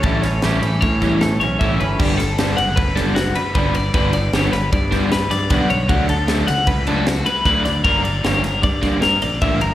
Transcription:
<<
  \new Staff \with { instrumentName = "Clean electric guitar" } { \time 5/4 \key g \lydian \tempo 4 = 154 a'8 cis''8 b'8 a'8 cis''4 a'8 cis''8 e''8 b'8 | g'8 a'4 fis''8 b'8 a'8 fis'8 b'8 b'8 d''8 | b'8 d''8 cis''8 b'8 d''4 b'8 d''8 fis''8 cis''8 | fis'8 a'4 fis''8 b'8 a'8 fis'8 b'8 b'8 d''8 |
bes'8 d''8 cis''8 bes'8 d''4 bes'8 d''8 e''8 bes'8 | }
  \new Staff \with { instrumentName = "Clean electric guitar" } { \time 5/4 \key g \lydian << { r8 cis'8 g'4 cis'4 a8 cis'4 cis'8 | r1 r4 | r1 r4 | r1 r4 |
r1 r4 | } \\ { a,4. e4 e,4. a,4 | r1 r4 | r1 r4 | r1 r4 |
r1 r4 | } >> }
  \new Staff \with { instrumentName = "Overdriven electric guitar" } { \clef bass \time 5/4 \key g \lydian <e g cis' e'>8 r8 <e g cis' e'>8 r4 <e g cis' e'>8 r4 <e g cis' e'>8 r8 | <d g b d'>8 r8 <d g b d'>8 r4 <d g b d'>8 r4 <d g b d'>8 r8 | <d g b d'>8 r8 <d g b d'>8 r4 <d g b d'>8 r4 <d g b d'>8 r8 | <d fis a d'>8 r8 <d fis a d'>8 r4 <d fis a d'>8 r4 <d fis a d'>8 r8 |
<d g bes d'>8 r8 <d g bes d'>8 r4 <d g bes d'>8 r4 <d g bes d'>8 r8 | }
  \new Staff \with { instrumentName = "Fingered electric bass" } { \clef bass \time 5/4 \key g \lydian a,,4 a,,8 a,,8 a,4. b,,8 a,,8 g,,8 | g,,4. fis,,2 r8 g,,4 | g,,4 g,,8 g,,8 g,4. g,8 b,,4 | d,4. cis,2 r8 d,4 |
g,,4 g,,8 g,,8 g,4. bes,,8 a,,8 g,,8 | }
  \new DrumStaff \with { instrumentName = "Drums" } \drummode { \time 5/4 <bd cymr>8 <cymr sn>8 <cymr sn>8 cymr8 <bd cymr>8 <bd cymr sn>8 <cymr sn>8 cymr8 <bd cymr>8 cymr8 | <cymc bd>8 <cymr sn>8 <cymr sn>8 cymr8 <bd cymr>8 <cymr sn>8 <cymr sn>8 cymr8 <bd cymr>8 cymr8 | <bd cymr>8 cymr8 <cymr sn>8 <cymr sn>8 <bd cymr>8 <bd cymr sn>8 <cymr sn>8 <cymr sn>8 <bd cymr sn>8 cymr8 | <bd cymr>8 cymr8 <cymr sn>8 <cymr sn>8 <bd cymr>8 cymr8 <cymr sn>8 cymr8 <bd cymr sn>8 <cymr sn>8 |
<bd cymr>8 cymr8 <cymr sn>8 <cymr sn>8 <bd cymr>8 <bd cymr sn>8 <cymr sn>8 cymr8 <bd cymr>8 cymr8 | }
>>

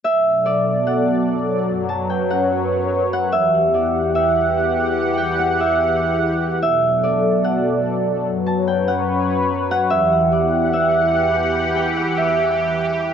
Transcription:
<<
  \new Staff \with { instrumentName = "Harp" } { \time 4/4 \key b \minor \tempo 4 = 146 e''4 d''4 fis''4 r4 | r8 a''8 g''8 fis''2 fis''8 | e''4 d''4 e''4 r4 | r8 g''8 fis''8 e''2~ e''8 |
e''4 d''4 fis''4 r4 | r8 a''8 g''8 fis''2 fis''8 | e''4 d''4 e''4 r4 | r8 g''8 fis''8 e''2~ e''8 | }
  \new Staff \with { instrumentName = "Analog synth pad" } { \time 4/4 \key b \minor << { <b, a' d''>1 | <fis, b' cis''>1 | <e, g' fis''>1~ | <e, g' fis''>1 |
<b, a' d''>1 | <fis, b' cis''>1 | <e, g' fis''>1~ | <e, g' fis''>1 | } \\ { fis1~ | fis1 | e1~ | e1 |
fis1~ | fis1 | e1~ | e1 | } >> }
>>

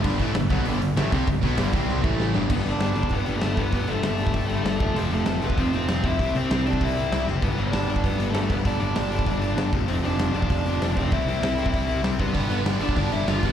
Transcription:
<<
  \new Staff \with { instrumentName = "Lead electric guitar" } { \time 4/4 \key g \mixolydian \tempo 4 = 195 r1 | r1 | <b b'>8 <d' d''>4 <d' d''>8 <b b'>8. <a a'>8. <b b'>8 | <b b'>8 <a a'>2~ <a a'>8 <a a'>4 |
<g g'>8 <a a'>4 <b b'>8 <c' c''>8 <c' c''>4 <e' e''>8~ | <e' e''>8 <c' c''>4 <d' d''>8 <e' e''>4. r8 | <b b'>8 <d' d''>4 <d' d''>8 <b b'>8. <a a'>8. <b b'>8 | <d' d''>8 <d' d''>2. r8 |
<c' c''>8 <d' d''>4 <d' d''>2 <c' c''>8 | <e' e''>2. r8 <b b'>8~ | <b b'>4 r8 <d' d''>8 <d' d''>8 <e' e''>8 <f' f''>8 <g' g''>8 | }
  \new Staff \with { instrumentName = "Overdriven electric guitar" } { \clef bass \time 4/4 \key g \mixolydian <g, d g>8 <a, e a>8 <g, d>8 <b, fis b>8 <g, d g>8 <g, d>8 <a, e a>8 <c g c'>8 | <g, d>8 <b, fis b>8 <g, d g>8 <c g c'>4 <a, e a>4 <g, d g>8 | r1 | r1 |
r1 | r1 | r1 | r1 |
r1 | r1 | <g, d g b d'>8 <g, d g b d'>8 <g, d g b d'>8 <g, d g b d'>8 <g, d g b d'>8 <g, d g b d'>8 <g, d g b d'>8 <g, d g b d'>8 | }
  \new Staff \with { instrumentName = "Overdriven electric guitar" } { \clef bass \time 4/4 \key g \mixolydian <g, d g>8 <a, e a>8 <g, d>8 <b, fis b>8 <g, d g>8 <g, d>8 <a, e a>8 <c g c'>8 | <g, d>8 <b, fis b>8 <g, d g>8 <c g c'>4 <a, e a>4 <g, d g>8 | <g, d g>8 <g, d g>8 <g, d g>8 <g, d g>8 <g, d g>8 <g, d g>8 <g, d g>8 <g, d g>8 | <g, d g>8 <g, d g>8 <g, d g>8 <g, d g>8 <g, d g>8 <g, d g>8 <g, d g>8 <f, c f>8 |
<f, c f>8 <f, c f>8 <f, c f>8 <f, c f>8 <f, c f>8 <f, c f>8 <f, c f>8 <f, c f>8 | <c g c'>8 <c g c'>8 <c g c'>8 <c g c'>8 <c g c'>8 <c g c'>8 <c g c'>8 <c g c'>8 | <g, d g>8 <g, d g>8 <g, d g>8 <g, d g>8 <g, d g>8 <g, d g>8 <g, d g>8 <g, d g>8 | <g, d g>8 <g, d g>8 <g, d g>8 <g, d g>8 <g, d g>8 <g, d g>8 <g, d g>8 <f, c f>8 |
<f, c f>8 <f, c f>8 <f, c f>8 <f, c f>8 <f, c f>8 <f, c f>8 <f, c f>8 <f, c f>8 | <c g c'>8 <c g c'>8 <c g c'>8 <c g c'>8 <c g c'>8 <c g c'>8 <c g c'>8 <c g c'>8 | <g, d g>8 <g, d g>8 <g, d g>8 <g, d g>8 <g, d g>8 <g, d g>8 <g, d g>8 <g, d g>8 | }
  \new Staff \with { instrumentName = "Overdriven electric guitar" } { \clef bass \time 4/4 \key g \mixolydian <g, d g>8 <a, e a>8 <g, d>8 <b, fis b>8 <g, d g>8 <g, d>8 <a, e a>8 <c g c'>8 | <g, d>8 <b, fis b>8 <g, d g>8 <c g c'>4 <a, e a>4 <g, d g>8 | r1 | r1 |
r1 | r1 | r1 | r1 |
r1 | r1 | r1 | }
  \new Staff \with { instrumentName = "Picked electric bass" } { \clef bass \time 4/4 \key g \mixolydian g,,8 a,,8 g,,8 b,,8 g,,8 g,,8 a,,8 c,8 | g,,8 b,,8 g,,8 c,4 a,,4 g,,8 | g,,8 g,,8 g,,8 g,,8 g,,8 g,,8 g,,8 g,,8 | g,,8 g,,8 g,,4 g,,4 g,,8 f,,8 |
f,,8 f,,8 f,,8 f,,8 f,,8 f,,8 f,,8 f,,8 | c,8 c,8 c,4 c,4 c,8 fis,,8 | g,,8 g,,8 g,,8 g,,8 g,,8 g,,8 g,,8 g,,8 | g,,8 g,,8 g,,4 g,,4 g,,8 f,,8 |
f,,8 f,,8 f,,8 f,,8 f,,8 f,,8 f,,8 f,,8 | c,8 c,8 c,4 c,4 c,8 g,8 | g,,8 g,,8 g,,8 g,,8 g,,8 g,,8 g,,8 g,,8 | }
  \new DrumStaff \with { instrumentName = "Drums" } \drummode { \time 4/4 <cymc bd>8 <hho bd>8 <hho sn>8 <hho bd>8 hho8 hho8 <hho sn>8 <hho bd>8 | <hho bd>8 <hho bd>8 <hho sn>8 <hho bd>8 sn8 bd8 sn8 sn8 | <cymc bd>8 hho8 <hho sn>8 hho16 bd16 <hho bd>8 hho8 <hho sn>8 <hho bd>8 | <hho bd>8 hho8 <hho sn>8 hho16 bd16 <hho bd>8 hho8 <hho sn>8 <hho bd>8 |
hho8 hho8 <hho sn>8 hho16 bd16 <hho bd>8 hho8 <hho sn>8 <hho bd>8 | <hho bd>8 hho8 <hho sn>8 hho16 bd16 <hho bd>8 hho8 <hho sn>8 sn8 | <hho bd>8 hho8 <hho sn>8 hho16 bd16 <hho bd>8 hho8 <hho sn>8 <hho bd>8 | <hho bd>8 hho8 <hho sn>8 hho16 bd16 <hho bd>8 hho8 <hho sn>8 <hho bd>8 |
hho8 hho8 <hho sn>8 hho16 bd16 <hho bd>8 hho8 <hho sn>8 <hho bd>8 | <hho bd>8 hho8 <hho sn>8 hho16 bd16 <hho bd>8 hho8 <hho sn>8 <hho bd>8 | <hho bd>8 hho8 <hho sn>8 hho16 bd16 <hho bd>8 hho8 <hho sn>8 <hho bd>8 | }
>>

